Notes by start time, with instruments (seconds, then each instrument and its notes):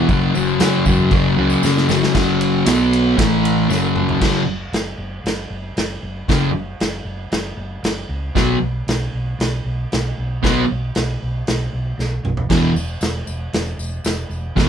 0.09 fingered electric bass F#1, distorted electric guitar F#2 C#3 F#3, kick, tambourine, crash
0.34 fingered electric bass F#1, distorted electric guitar F#2 C#3 F#3, tambourine
0.60 fingered electric bass F#2, distorted electric guitar F#2 C#3 F#3, snare, tambourine, crash
0.73 tambourine
0.86 fingered electric bass E2, distorted electric guitar F#2 C#3 F#3, kick, tambourine
1.11 fingered electric bass F#1, distorted electric guitar F#2 C#3 F#3, kick, crash
1.37 fingered electric bass C#2, distorted electric guitar F#2 C#3 F#3
1.50 tambourine
1.63 fingered electric bass F#2, distorted electric guitar F#2 C#3 F#3, snare, tambourine
1.77 snare
1.88 fingered electric bass F#1, distorted electric guitar F#2 C#3 F#3, snare, tambourine
2.02 snare, tambourine
2.13 fingered electric bass F#1, distorted electric guitar F#2 C#3 F#3, kick, snare, crash
2.41 ride
2.65 fingered electric bass B1, distorted electric guitar B2 F#3 B3, snare, ride, tambourine
2.93 ride
3.17 fingered electric bass A1, distorted electric guitar A2 E3 A3, kick, snare, ride
3.45 ride
3.69 fingered electric bass F#1, distorted electric guitar F#2 C#3 F#3, snare, tambourine
3.96 mid tom
4.09 floor tom
4.20 fingered electric bass F#1, distorted electric guitar F#2 C#3 F#3, kick, snare, crash
4.46 fingered electric bass F#1
4.72 fingered electric bass F#1, snare, crash
4.98 fingered electric bass F#1
5.24 fingered electric bass F#1, snare, crash
5.50 fingered electric bass F#1
5.76 fingered electric bass F#1, snare, crash
6.02 fingered electric bass F#1
6.28 fingered electric bass F#1, distorted electric guitar F#2 C#3 F#3, kick, snare, crash
6.53 fingered electric bass F#1
6.80 fingered electric bass F#1, snare, crash
7.05 fingered electric bass F#1
7.31 fingered electric bass F#1, snare, crash
7.57 fingered electric bass F#1
7.83 fingered electric bass F#1, snare, crash
8.09 fingered electric bass C#2
8.35 fingered electric bass B1, distorted electric guitar B2 F#3 B3, kick, snare, crash
8.60 fingered electric bass B1
8.87 fingered electric bass B1, snare, crash
9.13 fingered electric bass B1
9.39 fingered electric bass B1, snare, crash
9.64 fingered electric bass B1
9.92 fingered electric bass B1, snare, crash
10.18 fingered electric bass B1
10.43 fingered electric bass B1, distorted electric guitar B2 F#3 B3, kick, snare, crash
10.70 fingered electric bass B1
10.95 fingered electric bass B1, snare, crash
11.22 fingered electric bass B1
11.47 fingered electric bass B1, snare, crash
11.73 fingered electric bass B1
11.98 fingered electric bass B1, snare
12.23 fingered electric bass B1, mid tom
12.37 floor tom
12.50 fingered electric bass E1, distorted electric guitar E2 B2 E3, kick, snare, crash
12.75 fingered electric bass E1, tambourine
12.88 tambourine
13.01 fingered electric bass E1, snare, tambourine, crash
13.27 fingered electric bass E1, tambourine
13.53 fingered electric bass E1, snare, crash
13.66 tambourine
13.77 fingered electric bass E1, tambourine
14.04 fingered electric bass E1, snare, tambourine, crash
14.29 fingered electric bass E1, tambourine
14.56 fingered electric bass E1, distorted electric guitar E2 B2 E3, kick, snare, crash